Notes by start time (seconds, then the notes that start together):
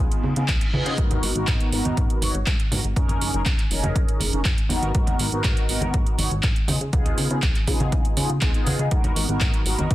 Already playing: B3 D#4 F4 G#4
0.00 reverse cymbal
0.11 closed hi-hat, shaker
0.23 C#3, high conga, shaker
0.36 C#3 B3 D#4 F4 G#4, closed hi-hat, shaker
0.48 C#2, kick, clap, closed hi-hat
0.61 closed hi-hat
0.73 C#3 B3 D#4 F4 G#4, high conga, shaker
0.86 C#3, closed hi-hat, shaker
0.98 G#2 B3, kick, closed hi-hat
1.11 closed hi-hat, high conga, shaker
1.23 G#1, open hi-hat, shaker
1.35 G#1 B3 D#4 F#4 A#4, closed hi-hat, shaker
1.47 G#2, kick, clap, closed hi-hat, high conga, shaker
1.60 closed hi-hat
1.72 G#1 B3 D#4 F#4 A#4, open hi-hat
1.85 G#1, closed hi-hat, high conga, shaker
1.97 G#2, kick, closed hi-hat
2.10 closed hi-hat
2.22 G#1 B3 D#4 F#4 C#5, open hi-hat, high conga, shaker
2.34 G#1, closed hi-hat, shaker
2.46 G#2, kick, clap, closed hi-hat
2.60 closed hi-hat
2.71 G#1 B3 D#4 F#4 A#4, open hi-hat, high conga, shaker
2.84 G#1, closed hi-hat, shaker
2.96 F#2 C#4 D#4 G#4 A#4, kick, closed hi-hat
3.09 closed hi-hat, high conga, shaker
3.21 F#1, open hi-hat, shaker
3.33 F#1 C#4 D#4 G#4 A#4, closed hi-hat, shaker
3.45 F#2, kick, clap, closed hi-hat, high conga, shaker
3.58 clap, closed hi-hat
3.70 F#1 C#4 D#4 G#4 A#4, open hi-hat, shaker
3.83 F#1, closed hi-hat, high conga, shaker
3.95 F#2, kick, closed hi-hat
4.08 closed hi-hat
4.20 F#1, open hi-hat, high conga, shaker
4.33 F#1 C#4 D#4 G#4 A#4, closed hi-hat, shaker
4.45 F#2, kick, clap, closed hi-hat
4.58 closed hi-hat
4.69 G#1 B3 D#4 F#4 A#4, open hi-hat, high conga, shaker
4.82 G#1, closed hi-hat, shaker
4.95 G#2 D#4 F#4, kick, closed hi-hat
5.07 closed hi-hat, high conga, shaker
5.19 G#1, open hi-hat, shaker
5.32 G#1 B3 D#4 F#4 A#4, closed hi-hat, shaker
5.44 G#2, kick, clap, closed hi-hat, high conga, shaker
5.57 closed hi-hat
5.69 G#1 B3 D#4 F#4 A#4, open hi-hat
5.81 G#1, closed hi-hat, high conga, shaker
5.94 G#2, kick, closed hi-hat
6.07 closed hi-hat
6.18 G#1 B3 D#4 F#4 C#5, open hi-hat, high conga, shaker
6.31 G#1, closed hi-hat, shaker
6.43 G#2, kick, clap, closed hi-hat
6.56 closed hi-hat
6.68 C#3 B3 D#4 F4 G#4, open hi-hat, high conga, shaker
6.81 C#3, closed hi-hat, shaker
6.93 C#2 B3 D#4 F4 G#4, kick, closed hi-hat
7.06 closed hi-hat, high conga, shaker
7.18 C#3, open hi-hat, shaker
7.30 C#3 B3 D#4 F4 G#4, closed hi-hat, shaker
7.42 C#2, kick, clap, closed hi-hat, high conga, shaker
7.55 clap, closed hi-hat
7.66 C#3 B3 D#4 F4 G#4, kick, open hi-hat, shaker
7.80 C#3, closed hi-hat, high conga, shaker
7.92 C#2, kick, closed hi-hat, shaker
8.05 closed hi-hat
8.17 C#3 B3 D#4 F4 G#4, open hi-hat, high conga, shaker
8.30 C#3, closed hi-hat
8.41 C#2 B3 D#4 F4 G#4, kick, clap, closed hi-hat
8.54 B3 D#4 F4 G#4, closed hi-hat, shaker
8.66 C#3, open hi-hat, high conga, shaker
8.79 C#3, closed hi-hat, shaker
8.91 G#2 A#4, kick, closed hi-hat, shaker
9.04 closed hi-hat, high conga, shaker
9.16 G#1, open hi-hat, shaker
9.29 G#1 B3 D#4 F#4 A#4, closed hi-hat, shaker
9.40 G#2, kick, clap, closed hi-hat, high conga, shaker
9.54 closed hi-hat
9.65 G#1 B3 D#4 F#4 A#4, open hi-hat, shaker
9.78 G#1, closed hi-hat, high conga, shaker
9.91 G#2, kick, closed hi-hat